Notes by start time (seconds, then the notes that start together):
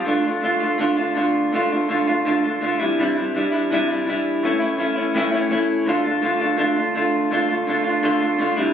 0.05 D3 A3 D4 F4
0.24 A3 D4 F4
0.41 D3 A3 D4 F4
0.60 A3 D4 F4
0.78 D3 A3 D4 F4
0.97 A3 D4 F4
1.15 D3 A3 D4 F4
1.52 D3 A3 D4 F4
1.70 A3 D4 F4
1.89 D3 A3 D4 F4
2.08 A3 D4 F4
2.25 D3 A3 D4 F4
2.44 A3 D4 F4
2.61 D3 A3 D4 F4
2.79 C3 E3 G3 D4 E4
2.99 C3 E3 G3 D4 E4
3.17 G3 D4 E4
3.34 E3 G3 D4 E4
3.52 G3 D4 E4
3.70 C3 E3 G3 D4 E4
3.89 G3 D4 E4
4.07 E3 G3 D4 E4
4.43 A2 E3 A3 C#4 E4
4.60 A3 C#4 E4
4.78 E3 A3 C#4 E4
4.96 A3 C#4 E4
5.14 A2 E3 A3 C#4 E4
5.32 A3 C#4 E4
5.50 E3 A3 C#4 E4
5.86 D3 A3 D4 F4
6.04 A3 D4 F4
6.22 D3 A3 D4 F4
6.40 A3 D4 F4
6.57 D3 A3 D4 F4
6.76 A3 D4 F4
6.95 D3 A3 D4 F4
7.31 D3 A3 D4 F4
7.49 A3 D4 F4
7.67 D3 A3 D4 F4
7.84 A3 D4 F4
8.03 D3 A3 D4 F4
8.21 A3 D4 F4
8.38 D3 A3 D4 F4
8.57 C3 E3 G3 D4 E4